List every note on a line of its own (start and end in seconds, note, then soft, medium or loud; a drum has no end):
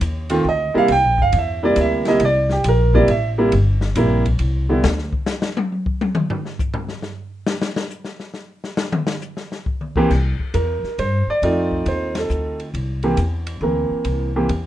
0.01 0.44 D#2 medium
0.01 kick soft
0.01 hi-hat pedal medium
0.01 ride medium
0.30 0.44 D#3 medium
0.30 0.44 A3 medium
0.30 0.44 C4 medium
0.30 0.44 F4 medium
0.30 ride medium
0.45 0.72 D2 medium
0.45 0.76 D#5 loud
0.45 kick soft
0.74 0.88 C3 medium
0.74 0.88 G3 medium
0.74 0.88 A#3 medium
0.74 0.88 E4 medium
0.74 0.91 F5 loud
0.74 muted upright bass stroke soft
0.88 1.04 C2 medium
0.88 1.19 G5 loud
0.88 kick soft
0.88 ride medium
1.04 1.18 A#1 medium
1.18 1.32 G1 medium
1.18 1.35 F5 loud
1.18 kick medium
1.32 1.76 E2 medium
1.32 kick soft
1.32 ride medium
1.39 1.64 E5 medium
1.63 2.04 C3 medium
1.63 2.04 G3 medium
1.63 2.04 A#3 medium
1.63 2.04 E4 medium
1.63 1.78 D5 medium
1.76 2.19 D2 medium
1.76 kick soft
1.76 hi-hat pedal medium
1.76 ride medium
1.81 2.08 E5 loud
2.05 2.20 C3 medium
2.05 2.20 G3 medium
2.05 2.20 A#3 medium
2.05 2.20 E4 medium
2.05 2.21 D#5 loud
2.05 snare medium
2.05 ride medium
2.20 2.63 C2 loud
2.20 kick soft
2.20 ride medium
2.25 2.51 D5 loud
2.50 2.66 G4 medium
2.50 snare medium
2.64 3.07 A#1 loud
2.64 kick soft
2.64 hi-hat pedal medium
2.64 ride medium
2.68 2.95 A#4 medium
2.94 3.07 C3 medium
2.94 3.08 G3 medium
2.94 3.07 A#3 medium
2.94 3.07 E4 medium
2.94 3.09 D5 loud
2.94 kick medium
3.08 3.51 A1 medium
3.08 3.28 E5 loud
3.08 ride medium
3.38 3.51 C3 medium
3.38 3.51 G3 medium
3.38 3.51 A#3 medium
3.38 3.51 E4 medium
3.52 3.95 G1 loud
3.52 kick soft
3.52 ride medium
3.81 snare medium
3.95 4.39 A#1 medium
3.95 4.23 C3 medium
3.95 4.23 G3 medium
3.95 4.23 A#3 medium
3.95 4.23 E4 medium
3.95 kick soft
3.95 hi-hat pedal medium
3.95 ride medium
4.25 kick medium
4.25 ride medium
4.39 4.82 C2 medium
4.39 ride medium
4.69 4.82 D3 medium
4.69 4.82 G3 medium
4.69 4.83 B3 medium
4.69 4.83 E4 medium
4.83 5.12 D2 medium
4.83 snare loud
4.98 snare soft
5.13 kick medium
5.26 snare loud
5.26 hi-hat pedal medium
5.42 snare loud
5.57 high tom loud
5.72 high tom soft
5.86 kick medium
6.01 high tom loud
6.15 mid tom loud
6.30 floor tom loud
6.45 snare soft
6.59 kick medium
6.59 hi-hat pedal medium
6.74 floor tom loud
6.88 snare medium
7.02 snare medium
7.47 snare loud
7.62 snare loud
7.76 snare loud
7.90 hi-hat pedal medium
8.05 snare medium
8.20 snare soft
8.34 snare soft
8.64 snare medium
8.77 snare loud
8.92 mid tom loud
9.07 snare loud
9.21 hi-hat pedal medium
9.37 snare medium
9.52 snare medium
9.66 kick medium
9.81 mid tom medium
9.96 10.09 E3 medium
9.96 10.09 A#3 medium
9.96 10.09 C4 medium
9.96 10.10 G4 loud
9.96 kick medium
10.10 10.37 C2 medium
10.10 kick medium
10.10 snare soft
10.10 crash medium
10.39 muted upright bass stroke soft
10.39 kick medium
10.54 10.81 E2 medium
10.54 10.99 A#4 medium
10.54 hi-hat pedal medium
10.54 ride medium
10.83 muted upright bass stroke soft
10.83 snare soft
10.98 11.25 G2 medium
10.98 11.26 C5 medium
10.98 kick soft
10.98 ride medium
11.27 11.89 D5 medium
11.27 muted upright bass stroke soft
11.42 11.84 F2 medium
11.42 12.65 A3 medium
11.42 12.65 C4 medium
11.42 12.65 D#4 medium
11.42 12.65 F4 medium
11.42 kick soft
11.42 ride medium
11.71 kick soft
11.86 12.28 D#2 medium
11.86 12.17 C5 medium
11.86 ride medium
12.15 12.57 A4 medium
12.15 snare medium
12.15 ride medium
12.30 12.72 D2 medium
12.30 hi-hat pedal medium
12.60 ride soft
12.74 13.16 C2 medium
12.74 kick soft
12.74 ride medium
13.03 13.16 E3 medium
13.03 13.16 A#3 medium
13.03 13.16 C4 medium
13.03 13.17 G4 medium
13.03 ride soft
13.17 13.60 E2 medium
13.17 kick soft
13.17 hi-hat pedal medium
13.17 ride medium
13.47 ride medium
13.61 13.88 D2 medium
13.61 14.29 E3 medium
13.61 14.29 A#3 medium
13.61 14.29 C4 medium
13.61 14.29 A#4 medium
13.61 kick soft
13.91 muted upright bass stroke soft
14.04 14.47 C2 medium
14.04 kick soft
14.04 ride medium
14.36 14.48 E3 medium
14.36 14.49 A#3 medium
14.36 14.48 C4 medium
14.36 14.48 G4 medium
14.49 14.66 E2 medium
14.49 kick soft
14.49 ride medium